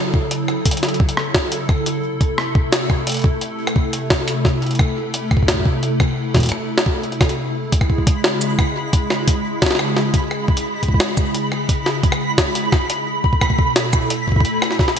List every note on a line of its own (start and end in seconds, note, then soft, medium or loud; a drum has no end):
0.00 1.99 C#3 medium
0.00 1.99 F#3 medium
0.00 1.99 E4 medium
0.00 7.51 A4 medium
0.14 kick loud
0.31 closed hi-hat medium
0.48 cross-stick medium
0.66 kick loud
0.66 closed hi-hat medium
0.71 closed hi-hat medium
0.77 closed hi-hat medium
0.83 snare medium
0.83 closed hi-hat medium
0.89 closed hi-hat soft
0.94 closed hi-hat soft
1.00 kick loud
1.09 closed hi-hat medium
1.17 cross-stick medium
1.34 kick loud
1.34 snare loud
1.52 closed hi-hat medium
1.69 kick loud
1.69 cross-stick medium
1.86 closed hi-hat medium
2.03 7.51 C3 medium
2.03 7.51 A3 medium
2.03 13.03 E4 medium
2.21 kick loud
2.21 closed hi-hat medium
2.38 cross-stick medium
2.55 kick loud
2.72 snare loud
2.72 closed hi-hat medium
2.90 kick loud
2.90 cross-stick soft
3.07 closed hi-hat medium
3.09 closed hi-hat medium
3.12 closed hi-hat medium
3.14 closed hi-hat medium
3.17 closed hi-hat soft
3.19 closed hi-hat soft
3.22 kick loud
3.22 closed hi-hat soft
3.41 closed hi-hat medium
3.67 cross-stick medium
3.76 kick loud
3.93 closed hi-hat medium
4.10 kick loud
4.10 cross-stick medium
4.10 snare loud
4.28 closed hi-hat loud
4.45 kick loud
4.45 snare medium
4.62 closed hi-hat soft
4.66 closed hi-hat soft
4.71 closed hi-hat soft
4.75 closed hi-hat soft
4.79 kick loud
4.79 cross-stick medium
5.14 closed hi-hat medium
5.31 kick loud
5.31 cross-stick medium
5.37 kick medium
5.43 kick medium
5.48 kick medium
5.48 snare loud
5.48 closed hi-hat medium
5.54 kick soft
5.60 kick soft
5.66 kick loud
5.83 closed hi-hat medium
6.00 kick loud
6.00 cross-stick medium
6.34 kick loud
6.34 snare medium
6.34 closed hi-hat soft
6.37 kick medium
6.37 closed hi-hat soft
6.39 kick medium
6.39 closed hi-hat soft
6.42 kick medium
6.42 closed hi-hat medium
6.44 kick soft
6.44 closed hi-hat medium
6.47 kick soft
6.47 closed hi-hat medium
6.49 kick soft
6.49 cross-stick soft
6.78 snare loud
6.86 kick loud
7.03 closed hi-hat soft
7.12 closed hi-hat soft
7.21 kick loud
7.21 cross-stick medium
7.21 snare medium
7.21 closed hi-hat soft
7.29 closed hi-hat soft
7.55 13.03 C#3 medium
7.55 13.03 G#3 medium
7.55 13.03 G#4 medium
7.55 14.99 B5 medium
7.72 kick loud
7.72 closed hi-hat medium
7.81 kick medium
7.81 cross-stick medium
7.90 kick medium
7.98 kick medium
8.07 kick loud
8.07 closed hi-hat medium
8.24 snare loud
8.41 closed hi-hat medium
8.41 shaker medium
8.59 kick loud
8.59 cross-stick medium
8.93 kick loud
8.93 closed hi-hat medium
9.10 cross-stick medium
9.10 snare medium
9.28 kick loud
9.28 closed hi-hat medium
9.62 kick loud
9.62 snare loud
9.62 closed hi-hat medium
9.66 snare medium
9.71 snare medium
9.75 snare medium
9.79 cross-stick medium
9.97 snare medium
10.14 kick loud
10.14 closed hi-hat medium
10.31 cross-stick medium
10.48 kick loud
10.57 closed hi-hat medium
10.83 kick soft
10.83 closed hi-hat soft
10.88 kick medium
10.94 kick medium
11.00 cross-stick medium
11.00 snare loud
11.17 kick loud
11.17 shaker medium
11.35 closed hi-hat medium
11.52 cross-stick medium
11.69 kick loud
11.69 closed hi-hat medium
11.86 snare medium
12.03 kick loud
12.03 closed hi-hat soft
12.12 cross-stick medium
12.38 kick loud
12.38 snare loud
12.55 closed hi-hat medium
12.72 kick loud
12.72 cross-stick medium
12.72 snare medium
12.90 closed hi-hat medium
13.07 14.99 B2 medium
13.07 14.99 A3 medium
13.07 14.99 E4 medium
13.07 14.99 A4 medium
13.24 kick medium
13.33 kick medium
13.41 kick medium
13.41 cross-stick medium
13.50 kick medium
13.59 kick loud
13.76 snare loud
13.76 closed hi-hat medium
13.93 kick loud
13.93 cross-stick medium
13.93 shaker medium
14.10 closed hi-hat medium
14.28 kick medium
14.32 kick medium
14.36 kick medium
14.41 kick loud
14.45 closed hi-hat medium
14.62 cross-stick medium
14.62 snare soft
14.71 snare soft
14.79 kick loud
14.79 snare soft
14.88 snare soft